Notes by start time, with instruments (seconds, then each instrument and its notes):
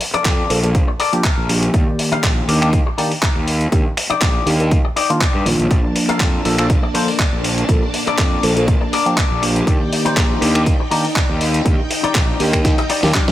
0.00 muted clean electric guitar stroke, open hi-hat
0.13 clean electric guitar A4 A#4 D5, muted fingered electric bass stroke, closed hi-hat
0.25 fingered electric bass F2, kick, clap, closed hi-hat
0.50 fingered electric bass A#1, tine electric piano F3 A#3 D4 A4, open hi-hat
0.63 tine electric piano F3 A#3 D4 A4, closed hi-hat
0.75 kick, closed hi-hat
0.88 muted clean electric guitar stroke
0.99 clean electric guitar A4 A#4 D5, open hi-hat
1.13 tine electric piano F3 A#3 D4 G4, closed hi-hat
1.24 clean electric guitar A4 A#4 F5, kick, clap, closed hi-hat
1.38 fingered electric bass A#1
1.49 tine electric piano F3 A#3 D4 G4, open hi-hat
1.63 closed hi-hat
1.73 fingered electric bass D#2, tine electric piano D#3 A#3 G4 D5, muted clean electric guitar stroke, kick, closed hi-hat
1.87 muted clean electric guitar stroke
1.99 muted clean electric guitar stroke, open hi-hat
2.12 clean electric guitar D#4 G4 F5, muted fingered electric bass stroke, closed hi-hat
2.23 fingered electric bass A#1, kick, clap, closed hi-hat
2.48 fingered electric bass D#2, tine electric piano D#3 A#3 D4 G4, open hi-hat
2.62 tine electric piano D#3 A#3 D4 G4, finger snap, closed hi-hat
2.73 kick, closed hi-hat
2.86 muted clean electric guitar stroke
2.98 tine electric piano D#3 A#3 D4 G4, clean electric guitar D#4 G4 D5, open hi-hat
3.11 open hi-hat
3.22 clean electric guitar D#4 G4 A#4, kick, clap, closed hi-hat
3.36 fingered electric bass D#2
3.48 open hi-hat
3.61 closed hi-hat
3.72 fingered electric bass D#2, tine electric piano D#3 A#3 D4 G4, muted clean electric guitar stroke, kick, closed hi-hat
3.85 muted clean electric guitar stroke
3.97 finger snap, muted clean electric guitar stroke, open hi-hat
4.10 clean electric guitar D#4 G4 D5, muted fingered electric bass stroke, closed hi-hat
4.21 fingered electric bass A#1, kick, clap, closed hi-hat
4.46 fingered electric bass D#2, tine electric piano D#3 A#3 D4 G4, open hi-hat
4.59 tine electric piano D#3 A#3 D4 G4, closed hi-hat
4.71 kick, closed hi-hat
4.84 muted clean electric guitar stroke
4.96 clean electric guitar D#4 G4 D5, open hi-hat
5.09 tine electric piano D#3 A#3 D4 F4, closed hi-hat
5.21 clean electric guitar D#4 G4 D5, kick, clap, closed hi-hat
5.34 fingered electric bass G2
5.45 fingered electric bass A#1, tine electric piano D#3 A#3 D4 F4, open hi-hat
5.59 fingered electric bass A#1, closed hi-hat
5.70 fingered electric bass A#1, tine electric piano F3 A#3 D4 A5, string machine A#3 D4 A5, muted clean electric guitar stroke, kick, closed hi-hat
5.84 muted clean electric guitar stroke
5.95 muted clean electric guitar stroke, open hi-hat
6.09 clean electric guitar A4 A#4 F5, muted fingered electric bass stroke, closed hi-hat
6.20 fingered electric bass F2, kick, clap, closed hi-hat
6.44 fingered electric bass A#1, tine electric piano F3 A#3 D4 A4, open hi-hat
6.58 tine electric piano F3 A#3 D4 A4, finger snap, closed hi-hat
6.70 kick, closed hi-hat
6.83 muted clean electric guitar stroke
6.94 tine electric piano F3 A#3 D4 A4, clean electric guitar A4 A#4 C5, open hi-hat
7.08 open hi-hat
7.19 clean electric guitar A4 A#4 D5, kick, clap, closed hi-hat
7.33 fingered electric bass A#1
7.44 open hi-hat
7.58 closed hi-hat
7.68 fingered electric bass A#1, tine electric piano F3 A#3 D4 A4, muted clean electric guitar stroke, kick, closed hi-hat
7.82 muted clean electric guitar stroke
7.94 muted clean electric guitar stroke, open hi-hat
8.07 clean electric guitar A4 A#4 D5, muted fingered electric bass stroke, closed hi-hat
8.18 fingered electric bass F2, kick, clap, closed hi-hat
8.43 fingered electric bass A#1, tine electric piano F3 A#3 D4 A4, open hi-hat
8.56 tine electric piano F3 A#3 D4 A4, closed hi-hat
8.68 kick, closed hi-hat
8.81 muted clean electric guitar stroke
8.93 clean electric guitar A4 A#4 D5, open hi-hat
9.05 tine electric piano F3 A#3 D4 G4, closed hi-hat
9.18 clean electric guitar A4 A#4 D5, kick, clap, closed hi-hat
9.30 fingered electric bass A#1
9.42 tine electric piano F3 A#3 D4 G4, open hi-hat
9.56 closed hi-hat
9.66 fingered electric bass D#2, tine electric piano D#3 A#3 G4 D5, string machine D#4 D5 G5, muted clean electric guitar stroke, kick, closed hi-hat
9.80 muted clean electric guitar stroke
9.92 muted clean electric guitar stroke, open hi-hat
10.05 clean electric guitar D#4 G4 C5, muted fingered electric bass stroke, closed hi-hat
10.17 fingered electric bass A#1, kick, clap, closed hi-hat
10.41 fingered electric bass D#2, tine electric piano D#3 A#3 D4 G4, open hi-hat
10.55 tine electric piano D#3 A#3 D4 G4, finger snap, closed hi-hat
10.66 kick, closed hi-hat
10.80 muted clean electric guitar stroke
10.90 tine electric piano D#3 A#3 D4 G4, clean electric guitar D#4 G4 A#4, open hi-hat
11.05 open hi-hat
11.15 clean electric guitar D#4 G4 D5, kick, clap, closed hi-hat
11.29 fingered electric bass D#2
11.41 open hi-hat
11.54 closed hi-hat
11.65 fingered electric bass D#2, tine electric piano D#3 A#3 D4 G4, muted clean electric guitar stroke, kick, closed hi-hat
11.78 muted clean electric guitar stroke
11.90 muted clean electric guitar stroke, open hi-hat
12.03 clean electric guitar D#4 G4 D5, muted fingered electric bass stroke, closed hi-hat
12.15 fingered electric bass A#1, kick, clap, closed hi-hat
12.39 fingered electric bass D#2, tine electric piano D#3 A#3 D4 G4, open hi-hat
12.53 tine electric piano D#3 A#3 D4 G4, finger snap, kick, closed hi-hat
12.65 kick, snare, closed hi-hat
12.78 muted clean electric guitar stroke, closed hi-hat
12.89 clean electric guitar D#4 G4 D5, open hi-hat
13.03 fingered electric bass D#2, tine electric piano D#3 A#3 D4 G4, snare, open hi-hat
13.14 clean electric guitar D#4 G4 D5 F5, kick, snare, clap, closed hi-hat
13.28 fingered electric bass A#1, tine electric piano D#3 A#3 D4 G4, snare